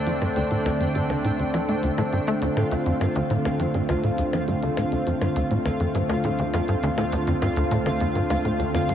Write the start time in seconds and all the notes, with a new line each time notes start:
Already playing: D2 D3 A3 C4 D4 G5
0.07 F2, closed hi-hat
0.22 G2, closed hi-hat, percussion blips
0.36 D2, closed hi-hat
0.51 A2, closed hi-hat
0.66 D2, closed hi-hat, percussion blips
0.81 F2, closed hi-hat
0.95 G2, closed hi-hat
1.10 D2, closed hi-hat, percussion blips
1.25 A2, closed hi-hat
1.39 D2, closed hi-hat
1.54 F3, closed hi-hat, percussion blips
1.69 A3, closed hi-hat
1.83 D2, closed hi-hat
1.98 A2, closed hi-hat, percussion blips
2.13 G2, closed hi-hat
2.27 A3, closed hi-hat
2.42 D2 F4 F5, closed hi-hat
2.57 A2, closed hi-hat, percussion blips
2.72 D2, closed hi-hat
2.86 F2, closed hi-hat
3.01 G2, closed hi-hat, percussion blips
3.16 D2, closed hi-hat
3.30 A2, closed hi-hat
3.45 D2, closed hi-hat, percussion blips
3.60 F2, closed hi-hat
3.74 G2, closed hi-hat
3.89 D2, closed hi-hat, percussion blips
4.04 A2, closed hi-hat
4.18 D2, closed hi-hat
4.33 F2, closed hi-hat, percussion blips
4.48 G2, closed hi-hat
4.63 D2, closed hi-hat
4.77 A2, closed hi-hat, percussion blips
4.92 D2, closed hi-hat
5.07 F2, closed hi-hat
5.21 G2, closed hi-hat, percussion blips
5.36 D2, closed hi-hat
5.51 A2, closed hi-hat
5.66 D2, closed hi-hat, percussion blips
5.80 F2, closed hi-hat
5.95 G2, closed hi-hat
6.09 D2, closed hi-hat, percussion blips
6.24 A2, closed hi-hat
6.39 D2, closed hi-hat
6.54 F2, closed hi-hat, percussion blips
6.68 G2, closed hi-hat
6.83 D2, closed hi-hat
6.98 A2, closed hi-hat, percussion blips
7.13 D2, closed hi-hat
7.27 F2, closed hi-hat
7.42 G2, closed hi-hat, percussion blips
7.57 D2, closed hi-hat
7.71 A2, closed hi-hat
7.86 D2, closed hi-hat, percussion blips
8.01 F2, closed hi-hat
8.15 G2, closed hi-hat
8.30 D2, closed hi-hat, percussion blips
8.45 A2, closed hi-hat
8.59 D2, closed hi-hat
8.75 F2, closed hi-hat, percussion blips
8.89 G2, closed hi-hat